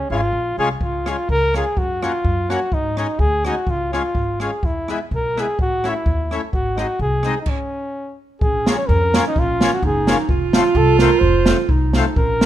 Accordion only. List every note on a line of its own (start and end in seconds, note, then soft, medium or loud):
0.11 0.21 G#3 medium
0.11 0.21 C#4 soft
0.11 0.21 F4 soft
0.59 0.69 G#3 medium
0.59 0.69 C#4 medium
0.59 0.69 F4 medium
1.06 1.17 G#3 soft
1.06 1.17 C#4 soft
1.06 1.16 F4 soft
1.54 1.64 G#3 medium
1.54 1.64 C#4 soft
1.54 1.65 F4 medium
2.02 2.12 A#3 soft
2.02 2.12 C#4 soft
2.02 2.12 F#4 medium
2.49 2.60 A#3 medium
2.49 2.60 C#4 soft
2.49 2.60 F#4 medium
2.97 3.07 G#3 soft
2.97 3.07 C#4 soft
2.97 3.07 D#4 soft
3.45 3.55 G#3 soft
3.45 3.55 C#4 soft
3.45 3.55 D#4 medium
3.92 4.03 G#3 soft
3.92 4.02 C#4 soft
3.92 4.03 F4 medium
4.40 4.51 G#3 soft
4.40 4.51 C#4 soft
4.40 4.51 F4 soft
4.89 4.99 G#3 soft
4.89 4.99 B3 soft
4.89 4.99 E4 medium
5.36 5.46 G#3 soft
5.36 5.46 B3 soft
5.36 5.47 E4 medium
5.84 5.94 A3 soft
5.84 5.94 C#4 soft
5.84 5.94 E4 soft
6.31 6.41 A3 medium
6.31 6.41 C#4 soft
6.31 6.41 E4 medium
6.76 6.87 G#3 soft
6.76 6.87 C4 soft
6.76 6.87 D#4 soft
7.24 7.34 G#3 medium
7.24 7.34 C4 soft
7.24 7.34 D#4 medium
8.67 8.77 A#3 soft
8.67 8.77 C#4 soft
8.67 8.77 F4 soft
9.14 9.24 A#3 medium
9.14 9.24 C#4 medium
9.14 9.24 F4 medium
9.61 9.71 A#3 medium
9.61 9.71 C#4 medium
9.61 9.71 F4 medium
10.08 10.17 A#3 medium
10.08 10.17 C#4 medium
10.08 10.17 F4 medium
10.54 10.64 A3 medium
10.54 10.64 C4 medium
10.54 10.64 F4 medium
11.01 11.10 A3 medium
11.01 11.10 C4 medium
11.01 11.11 F4 medium
11.48 11.57 A3 medium
11.48 11.57 C4 soft
11.48 11.57 F4 medium
11.96 12.05 A3 medium
11.96 12.05 C4 medium
11.96 12.05 F4 medium